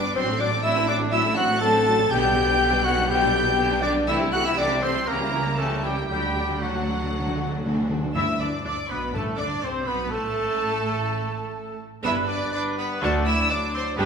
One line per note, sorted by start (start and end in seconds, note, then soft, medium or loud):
0.00 0.12 G1 medium
0.00 0.11 G2 medium
0.00 0.15 B3 medium
0.00 0.14 D4 loud
0.00 0.15 D5 loud
0.00 0.15 D6 loud
0.05 0.16 D4 medium
0.05 0.16 B4 medium
0.14 2.07 A1 loud
0.14 2.07 A2 loud
0.14 0.26 F#3 medium
0.14 0.26 C4 loud
0.14 0.39 C4 loud
0.14 0.27 C4 medium
0.14 0.26 D4 medium
0.14 0.27 F#4 medium
0.14 0.21 C5 loud
0.14 0.41 C5 loud
0.14 0.38 C6 loud
0.27 0.39 A3 medium
0.27 0.39 C4 medium
0.27 0.40 D4 medium
0.27 0.40 A4 medium
0.38 0.51 F#3 medium
0.38 0.52 C4 medium
0.38 0.62 D4 loud
0.38 0.51 D4 medium
0.38 0.51 D4 loud
0.38 0.52 F#4 medium
0.38 0.63 D5 loud
0.38 0.62 D5 loud
0.38 0.63 D6 loud
0.52 0.64 A3 medium
0.52 0.64 C4 medium
0.52 0.64 D4 medium
0.52 0.64 A4 medium
0.63 0.75 F#3 medium
0.63 0.76 C4 medium
0.63 0.75 D4 medium
0.63 0.88 E4 loud
0.63 0.90 E4 loud
0.63 0.76 F#4 medium
0.63 0.74 E5 loud
0.63 0.70 E5 loud
0.63 0.87 E6 loud
0.76 0.88 A3 medium
0.76 0.88 C4 medium
0.76 0.88 D4 medium
0.76 0.89 A4 medium
0.87 1.00 F#3 medium
0.87 1.00 C4 medium
0.87 1.12 D4 loud
0.87 1.01 D4 medium
0.87 1.14 D4 loud
0.87 1.00 F#4 medium
0.87 0.93 D5 loud
0.87 0.99 D5 loud
0.87 0.95 D6 loud
1.01 1.13 A3 medium
1.01 1.13 C4 medium
1.01 1.13 D4 medium
1.01 1.13 A4 medium
1.11 1.24 F#3 medium
1.11 1.24 C4 medium
1.11 1.24 D4 medium
1.11 1.23 E4 loud
1.11 1.35 E4 loud
1.11 1.24 F#4 medium
1.11 1.36 E5 loud
1.11 1.23 E5 loud
1.11 1.36 E6 loud
1.24 1.37 A3 medium
1.24 1.37 C4 medium
1.24 1.37 D4 medium
1.24 1.37 A4 medium
1.35 1.49 F#3 medium
1.35 1.49 C4 medium
1.35 1.49 D4 medium
1.35 1.61 F#4 loud
1.35 1.60 F#4 loud
1.35 1.49 F#4 medium
1.35 1.61 F#5 loud
1.35 1.62 F#6 loud
1.49 1.62 A3 medium
1.49 1.62 C4 medium
1.49 1.62 D4 medium
1.49 1.62 A4 medium
1.59 1.74 F#3 medium
1.59 1.73 C4 medium
1.59 1.74 D4 medium
1.59 1.73 F#4 medium
1.59 2.12 A4 loud
1.59 2.10 A4 loud
1.59 2.09 A5 loud
1.59 2.11 A5 loud
1.59 2.11 A6 loud
1.73 1.86 A3 medium
1.73 1.86 C4 medium
1.73 1.86 D4 medium
1.73 1.86 A4 medium
1.86 1.99 F#3 medium
1.86 1.99 C4 medium
1.86 1.99 D4 medium
1.86 1.99 F#4 medium
1.98 2.12 A3 medium
1.98 2.11 C4 medium
1.98 2.11 D4 medium
1.98 2.11 A4 medium
2.10 4.08 B1 loud
2.10 4.08 B2 loud
2.10 2.23 D3 loud
2.10 2.22 B3 medium
2.10 2.23 B3 loud
2.10 2.85 G4 loud
2.10 2.23 G4 medium
2.10 2.85 G4 loud
2.10 2.84 G5 loud
2.10 2.84 G6 loud
2.24 2.36 G3 medium
2.24 2.36 D4 medium
2.24 2.36 B4 medium
2.36 2.48 D3 medium
2.36 2.48 B3 medium
2.36 2.48 G4 medium
2.48 2.60 G3 medium
2.48 2.60 D4 medium
2.48 2.61 B4 medium
2.60 2.72 D3 medium
2.60 2.72 B3 medium
2.60 2.72 B3 loud
2.60 2.72 G4 medium
2.72 2.85 G3 medium
2.72 2.85 D4 medium
2.72 2.85 B4 medium
2.84 2.97 D3 medium
2.84 2.97 B3 medium
2.84 3.09 F#4 loud
2.84 3.10 F#4 loud
2.84 2.98 G4 medium
2.84 3.09 F#5 loud
2.84 3.11 F#5 loud
2.84 3.09 F#6 loud
2.97 3.09 G3 medium
2.97 3.10 D4 medium
2.97 3.09 B4 medium
3.08 3.21 D3 medium
3.08 3.21 B3 medium
3.08 3.81 G4 loud
3.08 3.21 G4 medium
3.08 3.81 G5 loud
3.08 3.82 G5 loud
3.08 3.81 G6 loud
3.22 3.34 G3 medium
3.22 3.34 D4 medium
3.22 3.34 B4 medium
3.34 3.46 D3 medium
3.34 3.46 B3 medium
3.34 3.47 B3 medium
3.34 3.47 G4 medium
3.46 3.59 G3 medium
3.46 3.59 D4 medium
3.46 3.59 B4 medium
3.58 3.70 D3 loud
3.58 3.70 B3 loud
3.58 3.70 B3 medium
3.58 3.70 G4 medium
3.70 3.83 G3 medium
3.70 3.83 D4 medium
3.70 3.83 B4 medium
3.82 3.96 D3 medium
3.82 3.95 B3 medium
3.82 3.96 B3 medium
3.82 3.93 D4 loud
3.82 4.08 D4 loud
3.82 3.96 G4 medium
3.82 3.94 D5 loud
3.82 4.08 D5 loud
3.82 3.91 D6 loud
3.95 4.08 G3 medium
3.95 4.08 D4 medium
3.95 4.08 B4 medium
4.07 5.06 C2 loud
4.07 5.06 C3 loud
4.07 4.19 E3 loud
4.07 4.20 A3 loud
4.07 4.35 E4 loud
4.07 4.20 E4 loud
4.07 4.20 G4 medium
4.07 4.20 A4 medium
4.07 4.18 E5 loud
4.07 4.13 E5 loud
4.07 4.16 E6 loud
4.21 4.33 G3 medium
4.21 4.33 C4 medium
4.21 4.33 E4 medium
4.21 4.32 G4 medium
4.32 4.45 E3 medium
4.32 4.45 A3 medium
4.32 4.45 F#4 loud
4.32 4.39 F#4 loud
4.32 4.45 G4 medium
4.32 4.46 A4 medium
4.32 4.38 F#5 loud
4.32 4.45 F#5 loud
4.32 4.45 F#6 loud
4.44 4.58 G3 medium
4.44 4.58 C4 medium
4.44 4.58 E4 medium
4.44 4.59 E4 loud
4.44 4.52 E4 loud
4.44 4.57 G4 medium
4.44 4.50 E5 loud
4.44 4.51 E5 loud
4.44 4.58 E6 loud
4.56 4.69 E3 medium
4.56 4.69 A3 medium
4.56 4.85 D4 loud
4.56 4.70 D4 loud
4.56 4.69 G4 medium
4.56 4.70 A4 medium
4.56 4.83 D5 loud
4.56 4.82 D5 loud
4.56 4.82 D6 loud
4.70 4.83 G3 medium
4.70 4.83 C4 medium
4.70 4.83 E4 medium
4.70 4.81 G4 medium
4.81 4.95 E3 medium
4.81 4.95 A3 medium
4.81 4.94 C4 loud
4.81 5.09 C4 loud
4.81 4.94 G4 medium
4.81 4.95 A4 medium
4.81 5.07 C5 loud
4.81 5.09 C5 loud
4.81 5.07 C6 loud
4.95 5.08 G3 medium
4.95 5.08 C4 medium
4.95 5.08 E4 medium
4.95 5.07 G4 medium
5.06 6.07 C#2 loud
5.06 6.07 C#3 loud
5.06 5.19 E3 medium
5.06 5.60 A#3 loud
5.06 5.58 A#3 loud
5.06 5.19 C#4 medium
5.06 5.20 C#4 medium
5.06 5.20 G4 medium
5.06 5.57 A#4 loud
5.06 5.60 A#4 loud
5.06 5.57 A#5 loud
5.20 5.33 G3 medium
5.20 5.33 A#3 medium
5.20 5.33 E4 medium
5.20 5.33 A#4 medium
5.32 5.45 E3 medium
5.32 5.45 C#4 medium
5.32 5.46 C#4 medium
5.32 5.46 G4 medium
5.45 5.58 G3 medium
5.45 5.58 A#3 medium
5.45 5.59 E4 medium
5.45 5.59 A#4 medium
5.57 5.70 E3 medium
5.57 5.83 A3 loud
5.57 5.84 A3 medium
5.57 5.70 C#4 medium
5.57 5.70 G4 medium
5.57 5.64 A4 medium
5.57 5.82 A4 loud
5.57 5.83 A5 loud
5.71 5.84 G3 medium
5.71 5.84 A#3 medium
5.71 5.84 E4 medium
5.71 5.84 A#4 medium
5.82 5.97 E3 medium
5.82 5.95 G3 medium
5.82 5.96 G3 medium
5.82 5.97 C#4 medium
5.82 5.88 G4 medium
5.82 6.08 G4 loud
5.82 5.97 G4 medium
5.82 6.07 G5 loud
5.97 6.09 G3 medium
5.97 6.10 A#3 medium
5.97 6.11 E4 medium
5.97 6.10 A#4 medium
6.07 7.91 D2 medium
6.07 6.17 D3 soft
6.07 7.91 D3 medium
6.07 6.21 F#3 medium
6.07 6.60 G3 loud
6.07 6.22 A3 medium
6.07 6.22 D4 medium
6.07 6.59 G4 loud
6.07 6.60 G4 loud
6.07 6.60 G5 loud
6.11 6.22 F#4 medium
6.18 6.25 D3 soft
6.23 6.32 D3 soft
6.23 6.35 F#3 medium
6.23 6.35 A3 medium
6.23 6.36 D4 medium
6.23 6.36 F#4 medium
6.34 6.40 D3 medium
6.34 6.47 F#3 medium
6.34 6.47 A3 medium
6.34 6.48 D4 medium
6.34 6.48 F#4 medium
6.42 6.48 D3 medium
6.49 6.56 D3 medium
6.49 6.61 F#3 medium
6.49 6.61 A3 medium
6.49 6.61 D4 medium
6.49 6.60 F#4 medium
6.57 6.63 D3 medium
6.57 7.87 F#3 medium
6.57 7.87 F#4 medium
6.57 7.89 F#5 loud
6.62 6.71 D3 medium
6.62 6.74 F#3 medium
6.62 7.90 F#3 medium
6.62 6.73 A3 medium
6.62 6.73 D4 medium
6.62 6.73 F#4 medium
6.72 6.79 D3 medium
6.72 6.87 F#3 medium
6.72 6.87 A3 medium
6.72 6.87 D4 medium
6.72 6.87 F#4 medium
6.80 6.87 D3 medium
6.88 6.94 D3 medium
6.88 6.99 F#3 medium
6.88 6.99 A3 medium
6.88 7.00 D4 medium
6.88 7.00 F#4 medium
7.00 7.11 D3 medium
7.00 7.12 F#3 medium
7.00 7.12 A3 medium
7.00 7.13 D4 medium
7.00 7.13 F#4 medium
7.12 7.18 D3 medium
7.12 7.25 F#3 medium
7.12 7.25 A3 medium
7.12 7.25 D4 medium
7.12 7.25 F#4 medium
7.19 7.26 D3 medium
7.26 7.34 D3 medium
7.26 7.37 F#3 medium
7.26 7.37 A3 medium
7.26 7.38 D4 medium
7.26 7.38 F#4 medium
7.35 7.41 D3 medium
7.35 7.50 F#3 medium
7.35 7.50 A3 medium
7.35 7.50 F#4 medium
7.39 7.49 D3 medium
7.39 7.50 D4 medium
7.50 7.56 D3 medium
7.50 7.63 F#3 medium
7.50 7.63 A3 medium
7.50 7.63 D4 medium
7.50 7.63 F#4 medium
7.58 7.65 D3 loud
7.64 7.72 D3 loud
7.64 7.76 F#3 medium
7.64 7.76 A3 medium
7.64 7.75 D4 medium
7.64 7.76 F#4 medium
7.73 7.80 D3 loud
7.73 7.88 F#3 medium
7.73 7.88 A3 medium
7.73 7.88 D4 medium
7.73 7.88 F#4 medium
7.81 7.88 D3 loud
7.89 7.96 D3 loud
7.89 8.02 F#3 medium
7.89 8.01 A3 medium
7.89 8.01 D4 medium
7.89 8.01 F#4 medium
7.97 8.03 D3 loud
8.02 8.11 D3 loud
8.02 8.15 F#3 medium
8.02 8.15 A3 medium
8.02 8.15 D4 medium
8.02 8.15 F#4 medium
8.14 8.23 E2 medium
8.14 8.86 G2 loud
8.14 8.23 E3 medium
8.14 8.38 E4 loud
8.14 8.26 E4 medium
8.14 8.24 E4 loud
8.14 8.38 E5 medium
8.14 8.26 E5 medium
8.14 8.42 E5 medium
8.14 8.38 E6 medium
8.40 8.48 D2 medium
8.40 8.48 D3 medium
8.40 8.48 D4 medium
8.40 8.64 D4 medium
8.40 8.65 D4 medium
8.40 8.63 D5 medium
8.40 8.52 D5 medium
8.40 8.65 D5 medium
8.40 8.64 D6 medium
8.40 8.65 D6 medium
8.64 8.72 D2 medium
8.64 8.73 D3 medium
8.64 8.73 D4 medium
8.64 8.76 D4 medium
8.64 8.89 D5 medium
8.64 8.77 D5 medium
8.64 8.71 D6 medium
8.64 8.89 D6 loud
8.89 9.13 B1 medium
8.89 9.13 B2 medium
8.89 9.13 B3 medium
8.89 9.01 B3 medium
8.89 9.02 B3 medium
8.89 9.14 B4 medium
8.89 8.98 B4 medium
8.89 9.14 B4 medium
8.89 8.96 B5 medium
8.89 9.14 B5 loud
9.13 9.38 A1 medium
9.13 9.83 G2 loud
9.13 9.38 A2 medium
9.13 9.22 A3 medium
9.13 9.39 A3 medium
9.13 9.38 A3 medium
9.13 9.38 A4 medium
9.13 9.40 A4 medium
9.13 9.20 A5 medium
9.13 9.23 A5 medium
9.37 9.46 D2 medium
9.37 9.46 D3 medium
9.37 9.49 D4 medium
9.37 9.62 D4 medium
9.37 9.62 D5 medium
9.37 9.63 D5 medium
9.37 9.46 D6 loud
9.37 9.45 D6 medium
9.62 9.86 C2 medium
9.62 9.86 C3 medium
9.62 9.86 C4 medium
9.62 9.87 C4 medium
9.62 9.88 C4 medium
9.62 9.87 C5 medium
9.62 9.89 C5 medium
9.62 9.87 C5 medium
9.62 9.70 C6 medium
9.62 9.87 C6 medium
9.86 10.11 B1 medium
9.86 10.11 B2 medium
9.86 9.98 B3 medium
9.86 10.11 B3 medium
9.86 10.12 B3 medium
9.86 10.11 B4 medium
9.86 10.10 B5 loud
9.86 10.11 B5 medium
10.11 11.80 A1 medium
10.11 11.80 A2 medium
10.11 11.77 A3 medium
10.11 11.80 A3 medium
10.11 11.77 A4 medium
10.11 11.81 A4 medium
10.11 11.77 A5 loud
12.04 12.45 G1 loud
12.04 12.74 G2 loud
12.04 12.45 G2 loud
12.04 12.50 G3 medium
12.04 12.27 B3 medium
12.04 12.27 D4 medium
12.04 12.50 D4 medium
12.04 12.22 D4 medium
12.04 12.15 E4 loud
12.04 12.50 B4 medium
12.04 12.13 E5 loud
12.04 12.27 B5 medium
12.04 12.12 E6 loud
12.28 12.52 D4 medium
12.28 12.51 D5 loud
12.28 12.53 D6 loud
12.52 13.02 G3 medium
12.52 13.01 D4 medium
12.52 12.77 D4 loud
12.52 13.01 B4 medium
12.52 12.60 D5 loud
12.52 12.62 D6 loud
12.77 13.04 B3 loud
12.77 13.01 B4 loud
12.77 12.87 B5 loud
13.02 13.43 D2 loud
13.02 13.70 D3 loud
13.02 13.50 F#3 medium
13.02 13.25 A3 loud
13.02 13.25 D4 medium
13.02 13.19 D4 loud
13.02 13.49 D4 medium
13.02 13.25 F#4 medium
13.02 13.27 A4 loud
13.02 13.49 D5 medium
13.02 13.25 F#5 loud
13.02 13.12 A5 loud
13.26 13.52 E4 loud
13.26 13.35 E5 loud
13.26 13.50 E6 loud
13.50 13.97 F#3 loud
13.50 13.74 D4 loud
13.50 13.97 D4 loud
13.50 13.58 D5 medium
13.50 13.97 D5 medium
13.50 13.75 D6 loud
13.74 13.85 C4 loud
13.74 13.97 C5 loud
13.74 13.82 C6 loud
13.97 14.05 G1 loud
13.97 14.05 G2 loud
13.97 14.05 G3 loud
13.97 14.05 B3 loud
13.97 14.05 D4 loud
13.97 14.05 G4 loud
13.97 14.05 B4 loud
13.97 14.05 D5 loud
13.97 14.05 G5 loud
13.97 14.05 B5 loud